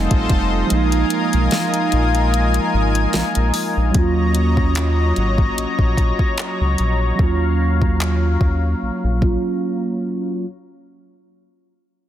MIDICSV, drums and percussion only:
0, 0, Header, 1, 2, 480
1, 0, Start_track
1, 0, Key_signature, -6, "minor"
1, 0, Tempo, 810811
1, 417, Time_signature, 4, 2, 24, 8
1, 7157, End_track
2, 0, Start_track
2, 0, Title_t, "Drums"
2, 64, Note_on_c, 9, 42, 53
2, 65, Note_on_c, 9, 36, 94
2, 123, Note_off_c, 9, 42, 0
2, 125, Note_off_c, 9, 36, 0
2, 175, Note_on_c, 9, 42, 56
2, 177, Note_on_c, 9, 36, 95
2, 234, Note_off_c, 9, 42, 0
2, 237, Note_off_c, 9, 36, 0
2, 416, Note_on_c, 9, 42, 74
2, 475, Note_off_c, 9, 42, 0
2, 546, Note_on_c, 9, 42, 56
2, 605, Note_off_c, 9, 42, 0
2, 653, Note_on_c, 9, 42, 68
2, 713, Note_off_c, 9, 42, 0
2, 788, Note_on_c, 9, 42, 49
2, 847, Note_off_c, 9, 42, 0
2, 894, Note_on_c, 9, 42, 66
2, 901, Note_on_c, 9, 38, 116
2, 953, Note_off_c, 9, 42, 0
2, 960, Note_off_c, 9, 38, 0
2, 1028, Note_on_c, 9, 42, 54
2, 1087, Note_off_c, 9, 42, 0
2, 1137, Note_on_c, 9, 42, 58
2, 1196, Note_off_c, 9, 42, 0
2, 1271, Note_on_c, 9, 42, 46
2, 1330, Note_off_c, 9, 42, 0
2, 1384, Note_on_c, 9, 42, 74
2, 1443, Note_off_c, 9, 42, 0
2, 1506, Note_on_c, 9, 42, 56
2, 1565, Note_off_c, 9, 42, 0
2, 1747, Note_on_c, 9, 42, 58
2, 1806, Note_off_c, 9, 42, 0
2, 1853, Note_on_c, 9, 42, 66
2, 1859, Note_on_c, 9, 38, 106
2, 1913, Note_off_c, 9, 42, 0
2, 1918, Note_off_c, 9, 38, 0
2, 1984, Note_on_c, 9, 42, 54
2, 2044, Note_off_c, 9, 42, 0
2, 2094, Note_on_c, 9, 46, 66
2, 2153, Note_off_c, 9, 46, 0
2, 2335, Note_on_c, 9, 42, 70
2, 2337, Note_on_c, 9, 36, 116
2, 2395, Note_off_c, 9, 42, 0
2, 2396, Note_off_c, 9, 36, 0
2, 2573, Note_on_c, 9, 42, 63
2, 2632, Note_off_c, 9, 42, 0
2, 2706, Note_on_c, 9, 36, 91
2, 2765, Note_off_c, 9, 36, 0
2, 2814, Note_on_c, 9, 42, 66
2, 2821, Note_on_c, 9, 39, 104
2, 2873, Note_off_c, 9, 42, 0
2, 2880, Note_off_c, 9, 39, 0
2, 3057, Note_on_c, 9, 42, 51
2, 3116, Note_off_c, 9, 42, 0
2, 3186, Note_on_c, 9, 36, 95
2, 3246, Note_off_c, 9, 36, 0
2, 3304, Note_on_c, 9, 42, 70
2, 3363, Note_off_c, 9, 42, 0
2, 3426, Note_on_c, 9, 36, 82
2, 3485, Note_off_c, 9, 36, 0
2, 3537, Note_on_c, 9, 36, 87
2, 3541, Note_on_c, 9, 42, 59
2, 3596, Note_off_c, 9, 36, 0
2, 3600, Note_off_c, 9, 42, 0
2, 3666, Note_on_c, 9, 36, 85
2, 3725, Note_off_c, 9, 36, 0
2, 3775, Note_on_c, 9, 42, 62
2, 3780, Note_on_c, 9, 39, 104
2, 3834, Note_off_c, 9, 42, 0
2, 3839, Note_off_c, 9, 39, 0
2, 4015, Note_on_c, 9, 42, 53
2, 4075, Note_off_c, 9, 42, 0
2, 4257, Note_on_c, 9, 36, 114
2, 4317, Note_off_c, 9, 36, 0
2, 4627, Note_on_c, 9, 36, 93
2, 4686, Note_off_c, 9, 36, 0
2, 4742, Note_on_c, 9, 39, 99
2, 4801, Note_off_c, 9, 39, 0
2, 4977, Note_on_c, 9, 36, 94
2, 5036, Note_off_c, 9, 36, 0
2, 5458, Note_on_c, 9, 36, 87
2, 5517, Note_off_c, 9, 36, 0
2, 7157, End_track
0, 0, End_of_file